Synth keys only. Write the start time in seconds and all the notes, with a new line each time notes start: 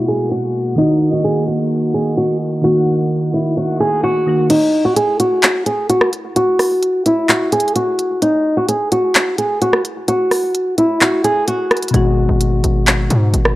Already playing: B2 G#3 F#4
0.76 D#3 A#3
0.81 F#4
2.62 D#3 A#3
2.67 F#4
4.26 D#3 A#3 F#4
11.91 B2 G#3
11.96 F#4